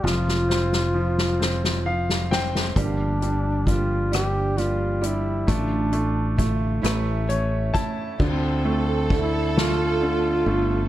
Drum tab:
CC |------------|------------|------------|x-----------|
RD |------------|------------|------------|--x-x-x-x-x-|
HH |------------|x-x-x-x-x-x-|x-x-x-x-x-x-|------------|
SD |oooo-ooo-ooo|------r-r---|------r-----|------o-----|
BD |------------|o---o-------|o---o-----o-|o---o-------|